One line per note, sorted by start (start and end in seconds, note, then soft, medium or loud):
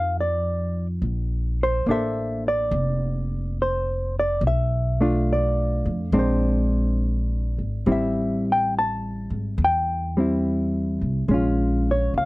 0.00 0.98 F2 medium
0.00 1.00 F3 soft
0.00 1.03 D#4 soft
0.00 1.05 A4 soft
0.00 0.17 F5 medium
0.21 0.86 D5 medium
1.02 1.83 A#1 medium
1.63 1.87 C5 medium
1.86 2.68 A1 medium
1.86 4.42 A#3 soft
1.86 4.43 D4 soft
1.86 4.44 A4 soft
1.91 3.61 C5 soft
1.91 2.48 E5 medium
2.48 3.62 D5 medium
2.71 4.38 F1 medium
3.62 4.19 C5 medium
4.19 4.43 D5 medium
4.41 5.82 B1 medium
4.47 5.26 E5 medium
5.01 6.13 A3 soft
5.01 6.13 D4 soft
5.01 6.14 F4 medium
5.33 6.12 D5 medium
5.86 6.11 F2 medium
6.12 7.54 A#1 medium
6.12 7.86 G#3 soft
6.12 7.86 C4 soft
6.12 7.87 D4 soft
6.19 7.58 C5 medium
7.58 7.84 G#1 soft
7.86 9.27 A1 medium
7.86 10.16 G3 medium
7.86 10.17 C4 soft
7.86 10.19 E4 soft
7.92 8.44 E5 medium
8.52 8.74 G5 medium
8.79 9.57 A5 medium
9.30 9.56 G#1 medium
9.58 10.98 E2 medium
9.65 11.01 G5 medium
10.17 11.28 G3 soft
10.17 11.29 C4 soft
10.17 11.30 E4 soft
11.01 11.27 C2 medium
11.28 12.10 A#1 medium
11.28 12.25 G#3 soft
11.28 12.25 C#4 soft
11.34 12.25 F4 soft
11.91 12.17 C#5 medium
12.14 12.25 C#2 medium
12.14 12.25 F5 medium